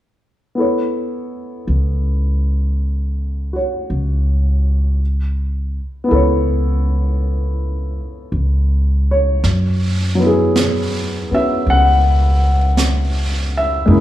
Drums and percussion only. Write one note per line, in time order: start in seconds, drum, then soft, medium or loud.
9.44 brush sweep soft
9.44 snare soft
10.56 brush sweep soft
10.56 snare soft
10.56 hi-hat pedal soft
11.66 brush sweep soft
12.77 brush sweep soft
12.77 snare soft
12.77 hi-hat pedal soft
13.88 brush sweep soft